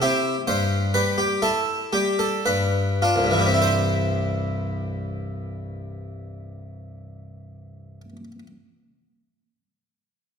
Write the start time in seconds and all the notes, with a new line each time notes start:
0.02 C4 E4 G4
0.47 G2 C5
0.94 G3 B4
1.18 G4
1.42 E4 A4
1.93 G3 G4
2.19 A4
2.46 G2 B4
3.02 D4 F4
3.16 C2
3.24 G2
3.31 E3
3.39 G3
3.46 C4
3.54 E4
3.62 C5